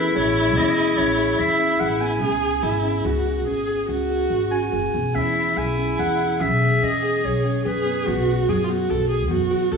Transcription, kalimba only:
0.15 0.38 G#4 medium
0.57 0.69 C#4 medium
0.77 0.89 G#4 medium
0.98 1.10 C#4 medium
1.19 1.42 G#4 medium
1.59 1.71 C#4 medium
1.80 1.92 G#4 medium
2.01 2.12 B3 medium
2.21 2.45 C#4 medium
2.63 2.75 G#4 medium
2.84 2.96 C#4 medium
3.05 3.28 G#4 medium
3.47 3.58 C#4 medium
3.68 3.79 G#4 medium
3.89 4.01 C#4 medium
4.10 4.34 G#4 medium
4.52 4.64 C#4 medium
4.73 4.84 G#4 medium
4.94 5.06 B3 medium
5.15 5.38 C#4 medium
5.57 5.69 G#4 medium
5.78 5.90 C#4 medium
5.99 6.23 G#4 medium
6.41 6.52 C#4 medium
6.62 6.73 G#4 medium
6.83 6.94 C#4 medium
7.03 7.26 G#4 medium
7.45 7.57 C#4 medium
7.65 7.77 G#4 medium
7.86 7.98 B3 medium
8.07 8.30 B3 medium
8.49 8.60 F#4 medium
8.70 8.81 B3 medium
8.90 9.13 F#4 medium
9.31 9.42 B3 medium
9.51 9.63 F#4 medium
9.71 9.77 B3 medium

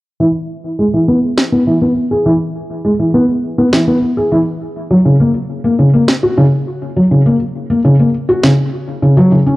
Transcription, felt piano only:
0.20 0.25 E3 medium
0.79 0.84 G#3 medium
0.93 1.02 E3 medium
1.08 1.17 B3 medium
1.52 1.61 B3 medium
1.67 1.76 E3 medium
1.82 1.91 B3 medium
2.11 2.24 G#4 medium
2.26 2.31 E3 medium
2.85 2.90 G#3 medium
2.99 3.08 E3 medium
3.14 3.23 B3 medium
3.58 3.67 B3 medium
3.73 3.82 E3 medium
3.88 3.97 B3 medium
4.17 4.30 G#4 medium
4.32 4.37 E3 medium
4.91 4.96 F#3 medium
5.05 5.14 C#3 medium
5.20 5.29 A#3 medium
5.64 5.73 A#3 medium
5.79 5.88 C#3 medium
5.94 6.02 A#3 medium
6.23 6.36 F#4 medium
6.38 6.43 C#3 medium
6.96 7.02 F#3 medium
7.11 7.20 C#3 medium
7.26 7.35 A#3 medium
7.70 7.79 A#3 medium
7.85 7.94 C#3 medium
7.99 8.08 A#3 medium
8.29 8.42 F#4 medium
8.43 8.49 C#3 medium
9.02 9.16 C#3 medium
9.17 9.30 F#3 medium
9.32 9.37 C#3 medium
9.46 9.56 C#4 medium

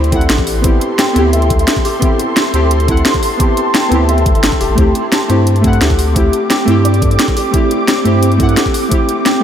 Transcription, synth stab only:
0.00 0.61 B3 medium
0.00 0.11 C4 medium
0.00 0.13 E4 medium
0.00 0.67 G4 loud
0.11 0.62 C4 medium
0.11 0.62 E4 medium
0.11 0.63 F#5 loud
0.61 1.12 B3 medium
0.61 1.13 C4 medium
0.61 1.14 E4 medium
0.67 1.15 G4 medium
1.13 1.98 B3 loud
1.13 1.99 C4 medium
1.13 2.00 E4 medium
1.19 2.01 G4 loud
1.99 2.50 B3 medium
1.99 2.51 C4 medium
1.99 2.52 E4 medium
2.05 2.53 G4 loud
2.53 2.86 C4 medium
2.53 2.86 E4 medium
2.53 2.87 G4 loud
2.87 3.37 C4 medium
2.87 3.38 E4 medium
2.87 3.39 F#5 loud
3.37 3.87 B3 medium
3.37 3.89 C4 medium
3.37 3.90 E4 medium
3.43 3.91 G4 medium
3.89 4.74 B3 loud
3.89 4.75 C4 medium
3.89 4.76 E4 medium
3.94 4.77 G4 loud
4.75 5.26 A3 medium
4.75 5.27 C4 medium
4.75 5.28 E4 medium
4.81 5.29 G4 loud
5.28 5.60 A3 medium
5.28 5.62 C4 medium
5.28 5.62 E4 medium
5.28 5.63 G4 loud
5.61 6.12 A3 loud
5.61 6.13 C4 medium
5.61 6.14 E4 medium
5.67 6.15 F#5 loud
6.13 6.64 A3 medium
6.13 6.65 C4 medium
6.13 6.66 E4 medium
6.19 6.67 G4 medium
6.65 7.50 A3 loud
6.65 7.51 C4 medium
6.65 7.52 E4 medium
6.70 7.53 G4 loud
7.51 8.02 A3 medium
7.51 8.03 C4 medium
7.51 8.04 E4 medium
7.57 8.05 G4 medium
8.04 8.35 A3 medium
8.04 8.38 C4 medium
8.04 8.38 E4 medium
8.04 8.38 G4 loud
8.37 8.87 A3 medium
8.37 8.89 C4 medium
8.37 8.90 E4 medium
8.43 8.91 F#5 loud
8.89 9.39 A3 medium
8.89 9.41 C4 medium
8.89 9.42 E4 medium
8.94 9.43 G4 medium
9.40 9.43 A3 loud

